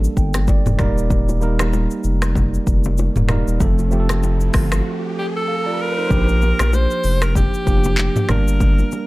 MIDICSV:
0, 0, Header, 1, 6, 480
1, 0, Start_track
1, 0, Key_signature, -2, "major"
1, 0, Tempo, 625000
1, 849, Time_signature, 4, 2, 24, 8
1, 6965, End_track
2, 0, Start_track
2, 0, Title_t, "Alto saxophone"
2, 0, Program_c, 0, 65
2, 3983, Note_on_c, 0, 67, 85
2, 4042, Note_off_c, 0, 67, 0
2, 4119, Note_on_c, 0, 69, 104
2, 4459, Note_on_c, 0, 70, 112
2, 4470, Note_off_c, 0, 69, 0
2, 5179, Note_on_c, 0, 72, 118
2, 5190, Note_off_c, 0, 70, 0
2, 5555, Note_on_c, 0, 70, 100
2, 5567, Note_off_c, 0, 72, 0
2, 5653, Note_off_c, 0, 70, 0
2, 5658, Note_on_c, 0, 67, 101
2, 6343, Note_off_c, 0, 67, 0
2, 6378, Note_on_c, 0, 70, 100
2, 6965, Note_off_c, 0, 70, 0
2, 6965, End_track
3, 0, Start_track
3, 0, Title_t, "Tine electric piano"
3, 0, Program_c, 1, 4
3, 0, Control_c, 1, 64, 127
3, 0, Note_on_c, 1, 55, 82
3, 0, Note_on_c, 1, 58, 78
3, 0, Note_on_c, 1, 62, 76
3, 0, Note_on_c, 1, 69, 88
3, 129, Note_on_c, 1, 79, 67
3, 352, Note_off_c, 1, 79, 0
3, 370, Note_on_c, 1, 74, 76
3, 593, Note_off_c, 1, 74, 0
3, 598, Note_off_c, 1, 55, 0
3, 598, Note_on_c, 1, 55, 95
3, 605, Note_off_c, 1, 58, 0
3, 605, Note_on_c, 1, 58, 88
3, 608, Note_on_c, 1, 74, 78
3, 612, Note_on_c, 1, 63, 86
3, 618, Note_on_c, 1, 70, 106
3, 620, Control_c, 1, 64, 0
3, 621, Note_off_c, 1, 69, 0
3, 624, Note_off_c, 1, 62, 0
3, 764, Control_c, 1, 64, 127
3, 832, Note_off_c, 1, 74, 0
3, 1003, Note_off_c, 1, 55, 0
3, 1006, Note_off_c, 1, 58, 0
3, 1010, Note_off_c, 1, 63, 0
3, 1013, Note_off_c, 1, 70, 0
3, 1080, Note_on_c, 1, 55, 84
3, 1086, Note_on_c, 1, 58, 78
3, 1092, Note_on_c, 1, 63, 75
3, 1100, Note_on_c, 1, 70, 93
3, 1786, Note_off_c, 1, 55, 0
3, 1789, Note_off_c, 1, 58, 0
3, 1792, Note_off_c, 1, 63, 0
3, 1796, Note_off_c, 1, 70, 0
3, 2518, Note_on_c, 1, 55, 78
3, 2525, Note_on_c, 1, 58, 75
3, 2531, Note_on_c, 1, 63, 76
3, 2538, Note_on_c, 1, 70, 90
3, 2709, Note_off_c, 1, 55, 0
3, 2712, Note_off_c, 1, 58, 0
3, 2715, Note_off_c, 1, 63, 0
3, 2719, Note_off_c, 1, 70, 0
3, 2759, Note_on_c, 1, 53, 87
3, 2766, Note_on_c, 1, 57, 85
3, 2772, Note_on_c, 1, 60, 79
3, 2779, Note_on_c, 1, 69, 95
3, 2781, Control_c, 1, 64, 0
3, 2901, Control_c, 1, 64, 127
3, 2949, Note_off_c, 1, 53, 0
3, 2952, Note_off_c, 1, 57, 0
3, 2955, Note_off_c, 1, 60, 0
3, 2959, Note_off_c, 1, 69, 0
3, 3000, Note_on_c, 1, 53, 81
3, 3006, Note_on_c, 1, 57, 80
3, 3012, Note_on_c, 1, 60, 78
3, 3019, Note_on_c, 1, 67, 75
3, 3069, Note_on_c, 1, 69, 93
3, 3072, Note_off_c, 1, 67, 0
3, 3706, Note_off_c, 1, 53, 0
3, 3709, Note_off_c, 1, 57, 0
3, 3712, Note_off_c, 1, 60, 0
3, 3741, Note_off_c, 1, 69, 0
3, 4209, Note_on_c, 1, 77, 69
3, 4215, Note_on_c, 1, 69, 61
3, 4341, Note_off_c, 1, 77, 0
3, 4344, Note_off_c, 1, 69, 0
3, 4348, Note_on_c, 1, 74, 75
3, 4353, Note_on_c, 1, 65, 66
3, 4576, Note_off_c, 1, 74, 0
3, 4579, Note_off_c, 1, 65, 0
3, 4588, Note_on_c, 1, 72, 65
3, 4592, Note_on_c, 1, 63, 57
3, 4679, Note_on_c, 1, 53, 76
3, 4685, Note_on_c, 1, 58, 75
3, 4691, Note_on_c, 1, 61, 60
3, 4698, Control_c, 1, 64, 0
3, 4698, Note_on_c, 1, 67, 88
3, 4741, Note_on_c, 1, 62, 71
3, 4748, Note_off_c, 1, 61, 0
3, 4816, Note_off_c, 1, 72, 0
3, 4818, Note_off_c, 1, 63, 0
3, 4848, Control_c, 1, 64, 127
3, 5386, Note_off_c, 1, 53, 0
3, 5389, Note_off_c, 1, 58, 0
3, 5395, Note_off_c, 1, 67, 0
3, 5417, Note_off_c, 1, 62, 0
3, 5880, Note_on_c, 1, 53, 74
3, 5886, Note_on_c, 1, 58, 66
3, 5892, Note_on_c, 1, 62, 68
3, 5898, Note_on_c, 1, 67, 80
3, 6356, Note_off_c, 1, 58, 0
3, 6359, Note_on_c, 1, 55, 82
3, 6362, Note_off_c, 1, 62, 0
3, 6364, Note_off_c, 1, 53, 0
3, 6365, Note_on_c, 1, 58, 78
3, 6371, Note_on_c, 1, 62, 79
3, 6373, Note_off_c, 1, 67, 0
3, 6378, Note_on_c, 1, 70, 91
3, 6380, Control_c, 1, 64, 0
3, 6539, Control_c, 1, 64, 127
3, 6965, Note_off_c, 1, 55, 0
3, 6965, Note_off_c, 1, 58, 0
3, 6965, Note_off_c, 1, 62, 0
3, 6965, Note_off_c, 1, 70, 0
3, 6965, End_track
4, 0, Start_track
4, 0, Title_t, "Sub bass"
4, 0, Program_c, 2, 38
4, 130, Note_on_c, 2, 31, 99
4, 457, Note_off_c, 2, 31, 0
4, 507, Note_on_c, 2, 29, 101
4, 595, Note_off_c, 2, 29, 0
4, 610, Note_on_c, 2, 27, 97
4, 1440, Note_off_c, 2, 27, 0
4, 1569, Note_on_c, 2, 29, 98
4, 1984, Note_off_c, 2, 29, 0
4, 2050, Note_on_c, 2, 29, 96
4, 2378, Note_off_c, 2, 29, 0
4, 2428, Note_on_c, 2, 27, 93
4, 2636, Note_off_c, 2, 27, 0
4, 2667, Note_on_c, 2, 27, 83
4, 2755, Note_off_c, 2, 27, 0
4, 2768, Note_on_c, 2, 29, 115
4, 3458, Note_off_c, 2, 29, 0
4, 3489, Note_on_c, 2, 31, 88
4, 3697, Note_off_c, 2, 31, 0
4, 4689, Note_on_c, 2, 34, 109
4, 5017, Note_off_c, 2, 34, 0
4, 5068, Note_on_c, 2, 34, 106
4, 5276, Note_off_c, 2, 34, 0
4, 5409, Note_on_c, 2, 29, 95
4, 5737, Note_off_c, 2, 29, 0
4, 5890, Note_on_c, 2, 29, 96
4, 6218, Note_off_c, 2, 29, 0
4, 6369, Note_on_c, 2, 31, 101
4, 6784, Note_off_c, 2, 31, 0
4, 6965, End_track
5, 0, Start_track
5, 0, Title_t, "Riser"
5, 0, Program_c, 3, 103
5, 848, Note_on_c, 3, 60, 84
5, 4689, Note_off_c, 3, 60, 0
5, 6965, End_track
6, 0, Start_track
6, 0, Title_t, "Drums"
6, 31, Note_on_c, 9, 82, 61
6, 108, Note_off_c, 9, 82, 0
6, 130, Note_on_c, 9, 36, 85
6, 131, Note_on_c, 9, 82, 55
6, 207, Note_off_c, 9, 36, 0
6, 208, Note_off_c, 9, 82, 0
6, 260, Note_on_c, 9, 82, 94
6, 263, Note_on_c, 9, 26, 76
6, 266, Note_on_c, 9, 37, 89
6, 274, Note_on_c, 9, 61, 74
6, 337, Note_off_c, 9, 82, 0
6, 340, Note_off_c, 9, 26, 0
6, 343, Note_off_c, 9, 37, 0
6, 351, Note_off_c, 9, 61, 0
6, 366, Note_on_c, 9, 82, 72
6, 368, Note_on_c, 9, 36, 96
6, 377, Note_on_c, 9, 60, 73
6, 442, Note_off_c, 9, 82, 0
6, 445, Note_off_c, 9, 36, 0
6, 454, Note_off_c, 9, 60, 0
6, 506, Note_on_c, 9, 45, 97
6, 509, Note_on_c, 9, 82, 56
6, 512, Note_on_c, 9, 61, 75
6, 583, Note_off_c, 9, 45, 0
6, 585, Note_off_c, 9, 82, 0
6, 589, Note_off_c, 9, 61, 0
6, 604, Note_on_c, 9, 26, 71
6, 607, Note_on_c, 9, 37, 93
6, 608, Note_on_c, 9, 82, 46
6, 609, Note_on_c, 9, 45, 95
6, 610, Note_on_c, 9, 36, 96
6, 612, Note_on_c, 9, 60, 53
6, 612, Note_on_c, 9, 64, 76
6, 681, Note_off_c, 9, 26, 0
6, 684, Note_off_c, 9, 37, 0
6, 684, Note_off_c, 9, 82, 0
6, 685, Note_off_c, 9, 45, 0
6, 687, Note_off_c, 9, 36, 0
6, 689, Note_off_c, 9, 60, 0
6, 689, Note_off_c, 9, 64, 0
6, 752, Note_on_c, 9, 82, 84
6, 829, Note_off_c, 9, 82, 0
6, 848, Note_on_c, 9, 36, 106
6, 849, Note_on_c, 9, 82, 73
6, 853, Note_on_c, 9, 64, 68
6, 925, Note_off_c, 9, 36, 0
6, 926, Note_off_c, 9, 82, 0
6, 930, Note_off_c, 9, 64, 0
6, 988, Note_on_c, 9, 82, 49
6, 992, Note_on_c, 9, 60, 50
6, 1065, Note_off_c, 9, 82, 0
6, 1069, Note_off_c, 9, 60, 0
6, 1087, Note_on_c, 9, 82, 56
6, 1096, Note_on_c, 9, 61, 55
6, 1164, Note_off_c, 9, 82, 0
6, 1173, Note_off_c, 9, 61, 0
6, 1224, Note_on_c, 9, 26, 93
6, 1227, Note_on_c, 9, 37, 112
6, 1228, Note_on_c, 9, 82, 96
6, 1238, Note_on_c, 9, 61, 76
6, 1301, Note_off_c, 9, 26, 0
6, 1303, Note_off_c, 9, 37, 0
6, 1305, Note_off_c, 9, 82, 0
6, 1315, Note_off_c, 9, 61, 0
6, 1329, Note_on_c, 9, 82, 69
6, 1332, Note_on_c, 9, 60, 81
6, 1406, Note_off_c, 9, 82, 0
6, 1409, Note_off_c, 9, 60, 0
6, 1464, Note_on_c, 9, 82, 59
6, 1541, Note_off_c, 9, 82, 0
6, 1565, Note_on_c, 9, 82, 52
6, 1642, Note_off_c, 9, 82, 0
6, 1705, Note_on_c, 9, 26, 76
6, 1706, Note_on_c, 9, 82, 80
6, 1707, Note_on_c, 9, 37, 98
6, 1781, Note_off_c, 9, 26, 0
6, 1783, Note_off_c, 9, 82, 0
6, 1784, Note_off_c, 9, 37, 0
6, 1808, Note_on_c, 9, 36, 85
6, 1814, Note_on_c, 9, 64, 76
6, 1814, Note_on_c, 9, 82, 69
6, 1885, Note_off_c, 9, 36, 0
6, 1891, Note_off_c, 9, 64, 0
6, 1891, Note_off_c, 9, 82, 0
6, 1952, Note_on_c, 9, 82, 60
6, 2029, Note_off_c, 9, 82, 0
6, 2050, Note_on_c, 9, 36, 88
6, 2051, Note_on_c, 9, 82, 55
6, 2127, Note_off_c, 9, 36, 0
6, 2128, Note_off_c, 9, 82, 0
6, 2181, Note_on_c, 9, 82, 97
6, 2195, Note_on_c, 9, 61, 77
6, 2258, Note_off_c, 9, 82, 0
6, 2271, Note_off_c, 9, 61, 0
6, 2286, Note_on_c, 9, 82, 73
6, 2299, Note_on_c, 9, 60, 75
6, 2363, Note_off_c, 9, 82, 0
6, 2376, Note_off_c, 9, 60, 0
6, 2425, Note_on_c, 9, 45, 95
6, 2428, Note_on_c, 9, 82, 57
6, 2432, Note_on_c, 9, 61, 77
6, 2502, Note_off_c, 9, 45, 0
6, 2504, Note_off_c, 9, 82, 0
6, 2509, Note_off_c, 9, 61, 0
6, 2523, Note_on_c, 9, 26, 74
6, 2526, Note_on_c, 9, 37, 93
6, 2527, Note_on_c, 9, 82, 47
6, 2528, Note_on_c, 9, 45, 98
6, 2534, Note_on_c, 9, 60, 52
6, 2534, Note_on_c, 9, 64, 72
6, 2600, Note_off_c, 9, 26, 0
6, 2603, Note_off_c, 9, 37, 0
6, 2603, Note_off_c, 9, 82, 0
6, 2605, Note_off_c, 9, 45, 0
6, 2610, Note_off_c, 9, 60, 0
6, 2610, Note_off_c, 9, 64, 0
6, 2671, Note_on_c, 9, 82, 84
6, 2748, Note_off_c, 9, 82, 0
6, 2768, Note_on_c, 9, 36, 103
6, 2768, Note_on_c, 9, 82, 72
6, 2774, Note_on_c, 9, 64, 71
6, 2845, Note_off_c, 9, 36, 0
6, 2845, Note_off_c, 9, 82, 0
6, 2851, Note_off_c, 9, 64, 0
6, 2907, Note_on_c, 9, 82, 47
6, 2913, Note_on_c, 9, 60, 49
6, 2984, Note_off_c, 9, 82, 0
6, 2990, Note_off_c, 9, 60, 0
6, 3006, Note_on_c, 9, 82, 57
6, 3017, Note_on_c, 9, 61, 57
6, 3083, Note_off_c, 9, 82, 0
6, 3094, Note_off_c, 9, 61, 0
6, 3144, Note_on_c, 9, 26, 90
6, 3146, Note_on_c, 9, 37, 122
6, 3147, Note_on_c, 9, 82, 90
6, 3156, Note_on_c, 9, 61, 77
6, 3220, Note_off_c, 9, 26, 0
6, 3223, Note_off_c, 9, 37, 0
6, 3224, Note_off_c, 9, 82, 0
6, 3233, Note_off_c, 9, 61, 0
6, 3249, Note_on_c, 9, 82, 70
6, 3252, Note_on_c, 9, 60, 81
6, 3326, Note_off_c, 9, 82, 0
6, 3329, Note_off_c, 9, 60, 0
6, 3384, Note_on_c, 9, 82, 63
6, 3461, Note_off_c, 9, 82, 0
6, 3483, Note_on_c, 9, 46, 77
6, 3483, Note_on_c, 9, 82, 56
6, 3486, Note_on_c, 9, 26, 79
6, 3488, Note_on_c, 9, 37, 100
6, 3490, Note_on_c, 9, 36, 96
6, 3560, Note_off_c, 9, 46, 0
6, 3560, Note_off_c, 9, 82, 0
6, 3562, Note_off_c, 9, 26, 0
6, 3565, Note_off_c, 9, 37, 0
6, 3567, Note_off_c, 9, 36, 0
6, 3623, Note_on_c, 9, 26, 78
6, 3625, Note_on_c, 9, 82, 83
6, 3626, Note_on_c, 9, 37, 97
6, 3700, Note_off_c, 9, 26, 0
6, 3702, Note_off_c, 9, 82, 0
6, 3703, Note_off_c, 9, 37, 0
6, 4689, Note_on_c, 9, 36, 106
6, 4690, Note_on_c, 9, 82, 75
6, 4692, Note_on_c, 9, 64, 67
6, 4766, Note_off_c, 9, 36, 0
6, 4767, Note_off_c, 9, 82, 0
6, 4769, Note_off_c, 9, 64, 0
6, 4828, Note_on_c, 9, 82, 50
6, 4833, Note_on_c, 9, 60, 48
6, 4905, Note_off_c, 9, 82, 0
6, 4910, Note_off_c, 9, 60, 0
6, 4928, Note_on_c, 9, 82, 55
6, 4936, Note_on_c, 9, 61, 61
6, 5005, Note_off_c, 9, 82, 0
6, 5013, Note_off_c, 9, 61, 0
6, 5064, Note_on_c, 9, 26, 96
6, 5067, Note_on_c, 9, 37, 122
6, 5068, Note_on_c, 9, 82, 93
6, 5077, Note_on_c, 9, 61, 78
6, 5141, Note_off_c, 9, 26, 0
6, 5144, Note_off_c, 9, 37, 0
6, 5145, Note_off_c, 9, 82, 0
6, 5153, Note_off_c, 9, 61, 0
6, 5170, Note_on_c, 9, 82, 71
6, 5171, Note_on_c, 9, 60, 81
6, 5247, Note_off_c, 9, 82, 0
6, 5248, Note_off_c, 9, 60, 0
6, 5304, Note_on_c, 9, 82, 62
6, 5381, Note_off_c, 9, 82, 0
6, 5404, Note_on_c, 9, 46, 78
6, 5404, Note_on_c, 9, 82, 57
6, 5481, Note_off_c, 9, 46, 0
6, 5481, Note_off_c, 9, 82, 0
6, 5543, Note_on_c, 9, 26, 79
6, 5545, Note_on_c, 9, 82, 80
6, 5546, Note_on_c, 9, 37, 99
6, 5620, Note_off_c, 9, 26, 0
6, 5621, Note_off_c, 9, 82, 0
6, 5623, Note_off_c, 9, 37, 0
6, 5648, Note_on_c, 9, 36, 88
6, 5653, Note_on_c, 9, 82, 72
6, 5654, Note_on_c, 9, 64, 79
6, 5725, Note_off_c, 9, 36, 0
6, 5730, Note_off_c, 9, 82, 0
6, 5731, Note_off_c, 9, 64, 0
6, 5792, Note_on_c, 9, 82, 60
6, 5869, Note_off_c, 9, 82, 0
6, 5890, Note_on_c, 9, 36, 90
6, 5890, Note_on_c, 9, 82, 54
6, 5967, Note_off_c, 9, 36, 0
6, 5967, Note_off_c, 9, 82, 0
6, 6021, Note_on_c, 9, 82, 97
6, 6034, Note_on_c, 9, 61, 77
6, 6098, Note_off_c, 9, 82, 0
6, 6111, Note_off_c, 9, 61, 0
6, 6126, Note_on_c, 9, 82, 73
6, 6127, Note_on_c, 9, 39, 96
6, 6136, Note_on_c, 9, 60, 75
6, 6203, Note_off_c, 9, 82, 0
6, 6204, Note_off_c, 9, 39, 0
6, 6213, Note_off_c, 9, 60, 0
6, 6265, Note_on_c, 9, 45, 96
6, 6267, Note_on_c, 9, 82, 58
6, 6270, Note_on_c, 9, 61, 78
6, 6342, Note_off_c, 9, 45, 0
6, 6344, Note_off_c, 9, 82, 0
6, 6346, Note_off_c, 9, 61, 0
6, 6364, Note_on_c, 9, 26, 73
6, 6367, Note_on_c, 9, 37, 94
6, 6367, Note_on_c, 9, 82, 48
6, 6368, Note_on_c, 9, 45, 98
6, 6371, Note_on_c, 9, 60, 54
6, 6371, Note_on_c, 9, 64, 76
6, 6441, Note_off_c, 9, 26, 0
6, 6444, Note_off_c, 9, 37, 0
6, 6444, Note_off_c, 9, 82, 0
6, 6445, Note_off_c, 9, 45, 0
6, 6448, Note_off_c, 9, 60, 0
6, 6448, Note_off_c, 9, 64, 0
6, 6512, Note_on_c, 9, 82, 86
6, 6589, Note_off_c, 9, 82, 0
6, 6608, Note_on_c, 9, 36, 102
6, 6609, Note_on_c, 9, 82, 73
6, 6613, Note_on_c, 9, 64, 68
6, 6685, Note_off_c, 9, 36, 0
6, 6686, Note_off_c, 9, 82, 0
6, 6690, Note_off_c, 9, 64, 0
6, 6748, Note_on_c, 9, 82, 50
6, 6751, Note_on_c, 9, 60, 50
6, 6825, Note_off_c, 9, 82, 0
6, 6828, Note_off_c, 9, 60, 0
6, 6847, Note_on_c, 9, 82, 57
6, 6855, Note_on_c, 9, 61, 60
6, 6924, Note_off_c, 9, 82, 0
6, 6932, Note_off_c, 9, 61, 0
6, 6965, End_track
0, 0, End_of_file